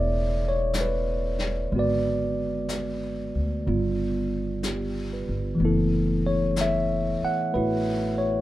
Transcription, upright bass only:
0.00 1.68 E1 medium
1.72 3.31 G#1 medium
3.35 3.64 D2 medium
3.67 5.24 G1 medium
5.29 5.58 G1 medium
5.60 7.18 F#1 medium
7.22 muted upright bass stroke soft
7.55 8.41 A1 medium

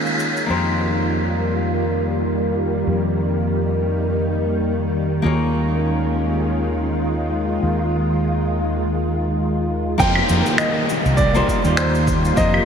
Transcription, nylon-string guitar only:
0.00 0.45 A#3 medium
0.00 0.46 D#4 medium
0.00 0.47 F4 medium
0.00 0.48 G#4 medium
0.00 0.49 C#5 medium
0.46 5.20 A#3 medium
0.46 5.20 D#4 medium
0.46 5.21 F4 medium
0.46 5.21 G4 medium
0.51 5.22 C5 medium
5.22 9.95 A#3 medium
5.22 9.96 D#4 medium
5.22 9.96 F4 medium
5.22 9.97 G#4 medium
5.26 9.97 C#5 medium
9.98 10.88 A#3 loud
9.98 10.88 D#4 medium
9.98 10.89 F4 medium
9.98 10.89 G4 medium
10.02 10.90 C5 loud
11.34 11.60 A#3 loud
11.34 11.61 D#4 loud
11.34 11.61 F4 medium
11.34 11.61 G4 medium
11.34 11.61 C5 loud
11.62 12.33 A#3 medium
11.62 12.33 D#4 medium
11.62 12.34 F4 medium
11.62 12.34 G4 medium
11.67 12.35 C5 medium
12.36 12.65 A#3 medium
12.36 12.65 D#4 medium
12.36 12.65 F4 medium
12.36 12.65 G4 medium
12.36 12.65 C5 medium

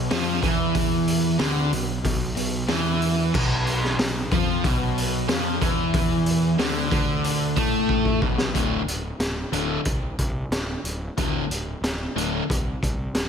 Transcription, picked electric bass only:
0.12 0.41 F2 medium
0.43 1.36 E2 medium
1.40 1.70 D2 medium
1.72 2.02 B1 medium
2.05 2.35 B1 medium
2.37 2.67 B1 medium
2.68 3.30 E2 medium
3.34 3.95 B1 medium
3.99 4.29 B1 medium
4.32 4.62 F2 medium
4.64 5.25 B1 medium
5.28 5.59 F2 medium
5.61 6.55 E2 medium
6.58 6.89 D2 loud
6.92 7.53 D2 medium
7.57 8.18 A2 loud
8.22 8.53 B1 medium
8.55 8.79 D1 medium
8.86 9.11 D1 medium
9.19 9.44 D1 medium
9.52 9.77 D1 medium
9.86 10.10 C2 medium
10.19 10.43 C2 medium
10.51 10.75 D1 medium
10.84 11.08 D1 medium
11.17 11.42 D1 medium
11.49 11.74 D1 medium
11.82 12.06 D1 medium
12.16 12.40 D1 medium
12.50 12.74 C2 medium
12.82 13.07 C2 medium
13.15 13.29 D1 medium

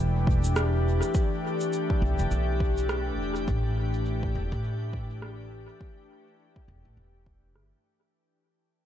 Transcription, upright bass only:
0.00 0.99 E1 medium
2.02 2.17 B1 medium
2.19 2.31 E1 medium
2.31 3.18 B1 medium
3.18 3.45 E1 medium
3.48 4.33 A1 medium
4.35 4.50 E1 medium
4.52 5.65 A1 medium
6.68 6.83 E1 medium
6.85 6.96 A1 medium
6.97 7.55 E1 medium
7.55 7.70 G1 medium

